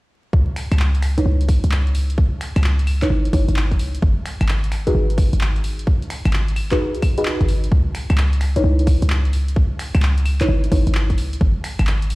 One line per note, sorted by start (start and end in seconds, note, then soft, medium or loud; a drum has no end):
0.33 0.45 C#2 loud
0.33 kick loud
0.56 finger snap medium
0.56 open hi-hat loud
0.72 1.22 C#2 medium
0.72 finger snap medium
0.72 closed hi-hat medium
0.72 claves medium
0.79 clap loud
0.95 closed hi-hat medium
1.02 finger snap medium
1.02 open hi-hat loud
1.18 2.99 D#4 loud
1.18 2.99 E4 medium
1.18 2.99 B4 medium
1.18 2.99 C#5 loud
1.18 kick medium
1.18 closed hi-hat medium
1.26 1.58 C#2 medium
1.41 closed hi-hat soft
1.49 kick loud
1.49 open hi-hat loud
1.64 2.27 C#2 medium
1.64 closed hi-hat medium
1.72 clap loud
1.87 closed hi-hat soft
1.95 open hi-hat loud
2.10 closed hi-hat medium
2.18 kick loud
2.41 finger snap medium
2.41 open hi-hat loud
2.56 3.07 C#2 medium
2.56 finger snap medium
2.56 closed hi-hat medium
2.56 claves medium
2.64 clap loud
2.79 closed hi-hat soft
2.87 open hi-hat loud
2.87 claves medium
3.02 3.31 D#4 loud
3.02 3.31 E4 medium
3.02 3.31 B4 medium
3.02 3.31 C#5 loud
3.02 kick medium
3.02 clap medium
3.02 closed hi-hat medium
3.10 3.29 G#1 medium
3.25 closed hi-hat soft
3.33 3.45 G#1 loud
3.33 4.02 D#4 medium
3.33 4.01 E4 medium
3.33 4.01 B4 medium
3.33 4.01 C#5 medium
3.33 kick loud
3.33 open hi-hat loud
3.48 3.81 G#1 loud
3.48 closed hi-hat medium
3.56 clap loud
3.71 kick medium
3.71 closed hi-hat soft
3.79 3.99 C#2 loud
3.79 open hi-hat loud
3.95 closed hi-hat medium
4.02 4.14 G#1 loud
4.02 kick loud
4.26 finger snap medium
4.26 open hi-hat loud
4.41 4.92 G#1 medium
4.41 finger snap medium
4.41 closed hi-hat medium
4.41 claves medium
4.49 clap loud
4.64 closed hi-hat soft
4.72 finger snap medium
4.72 open hi-hat loud
4.87 6.68 D#4 medium
4.87 6.68 F#4 medium
4.87 6.68 G#4 medium
4.87 6.68 B4 loud
4.87 kick medium
4.87 closed hi-hat medium
4.95 5.27 G#1 medium
5.10 closed hi-hat soft
5.18 kick loud
5.18 open hi-hat loud
5.33 5.96 G#1 medium
5.33 closed hi-hat medium
5.41 clap loud
5.56 closed hi-hat soft
5.64 open hi-hat loud
5.79 closed hi-hat medium
5.87 kick loud
6.02 closed hi-hat soft
6.10 finger snap medium
6.10 open hi-hat loud
6.25 6.96 G#1 medium
6.25 finger snap medium
6.25 closed hi-hat medium
6.25 claves medium
6.33 clap loud
6.48 closed hi-hat soft
6.56 open hi-hat loud
6.56 claves medium
6.71 7.01 D#4 medium
6.71 7.01 F#4 medium
6.71 7.01 G#4 medium
6.71 7.01 B4 loud
6.71 kick medium
6.71 clap medium
6.71 closed hi-hat medium
6.95 7.19 D#2 medium
6.95 closed hi-hat soft
7.02 kick loud
7.02 open hi-hat medium
7.02 claves medium
7.18 7.33 D#1 loud
7.18 7.71 D#4 medium
7.18 7.71 F#4 medium
7.18 7.71 G#4 medium
7.18 7.71 B4 loud
7.18 closed hi-hat medium
7.25 clap loud
7.41 7.69 G#1 medium
7.41 kick medium
7.41 closed hi-hat soft
7.49 open hi-hat medium
7.64 closed hi-hat medium
7.72 7.83 C#2 loud
7.72 kick loud
7.95 finger snap soft
7.95 open hi-hat loud
8.10 8.61 C#2 medium
8.10 finger snap medium
8.10 closed hi-hat medium
8.10 claves medium
8.18 clap loud
8.33 closed hi-hat soft
8.41 finger snap medium
8.41 open hi-hat loud
8.56 10.37 D#4 loud
8.56 10.37 E4 medium
8.56 10.37 B4 medium
8.56 10.37 C#5 loud
8.56 kick medium
8.56 closed hi-hat medium
8.64 8.96 C#2 medium
8.79 closed hi-hat soft
8.87 kick loud
8.87 open hi-hat medium
9.02 9.65 C#2 medium
9.02 closed hi-hat medium
9.10 clap loud
9.25 closed hi-hat soft
9.33 open hi-hat loud
9.48 closed hi-hat medium
9.56 kick loud
9.79 finger snap soft
9.79 open hi-hat loud
9.95 10.45 C#2 medium
9.95 finger snap medium
9.95 closed hi-hat medium
9.95 claves medium
10.02 clap loud
10.18 closed hi-hat medium
10.26 open hi-hat loud
10.26 claves medium
10.41 10.70 D#4 medium
10.41 10.70 E4 medium
10.41 10.70 B4 medium
10.41 10.70 C#5 loud
10.41 kick medium
10.41 clap medium
10.41 closed hi-hat medium
10.49 10.68 G#1 medium
10.64 closed hi-hat medium
10.72 10.83 G#1 loud
10.72 11.40 D#4 medium
10.72 11.40 E4 medium
10.72 11.40 B4 medium
10.72 11.40 C#5 medium
10.72 kick medium
10.72 open hi-hat loud
10.87 11.19 G#1 loud
10.87 closed hi-hat medium
10.95 clap loud
11.10 kick medium
11.10 closed hi-hat soft
11.18 11.37 C#2 loud
11.18 open hi-hat loud
11.33 closed hi-hat medium
11.41 11.52 G#1 loud
11.41 kick loud
11.64 finger snap medium
11.64 open hi-hat loud
11.79 12.15 G#1 medium
11.79 finger snap medium
11.79 closed hi-hat medium
11.79 claves medium
11.87 clap loud
12.02 closed hi-hat medium
12.10 open hi-hat loud